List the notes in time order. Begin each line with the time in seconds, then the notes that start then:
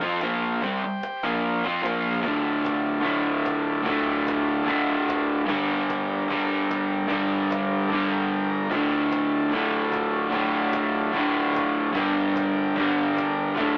0.01 F3 C4 F4, cajon bass
0.21 A#2 F3 A#3 F4 A#4 F5, cajon slap
0.61 C3 G3 C4 G4 C5 G5, cajon bass
0.84 C3 G3
1.03 cajon slap
1.23 A#2 F3 A#3 F4 A#4 F5, cajon bass
1.64 F3 C4 F4, cajon bass
1.81 A#2 F3 A#3 F4
1.85 A#4 F5, cajon slap
2.06 cajon slap
2.15 cajon bass
2.21 D2 A2 F4 A4, cajon bass
2.25 D3 D5
2.65 cajon bass, cajon slap
3.01 D2 A2
3.05 D3, cajon bass
3.45 cajon bass, cajon slap
3.83 D2 A2, cajon bass
3.88 D3
4.27 cajon bass, cajon slap
4.64 D2 A2, cajon bass
4.70 D3
5.08 cajon bass, cajon slap
5.45 G2 D3 G4, cajon bass
5.50 G3 A#4 D5
5.90 cajon bass, cajon slap
6.28 G2 D3, cajon bass
6.33 G3
6.70 cajon bass, cajon slap
7.07 G2 D3, cajon bass
7.12 G3
7.51 cajon bass, cajon slap
7.88 G2
7.93 D3 G3
8.12 G5
8.32 G5
8.50 A#5
8.70 D2 A2 F4 A4 D5, cajon bass
8.75 D3
9.12 cajon bass, cajon slap
9.50 D2 A2, cajon bass
9.55 D3
9.92 cajon bass, cajon slap
10.30 D2 A2, cajon bass
10.35 D3
10.73 cajon bass, cajon slap
11.12 D2 A2, cajon bass
11.18 D3
11.55 cajon bass, cajon slap
11.92 G2 D3, cajon bass
11.97 G3 G4 A#4 D5
12.36 cajon bass, cajon slap
12.75 G2 D3, cajon bass
12.80 G3
13.17 cajon bass, cajon slap
13.55 D2 A2 F4 A4, cajon bass
13.59 D3 D5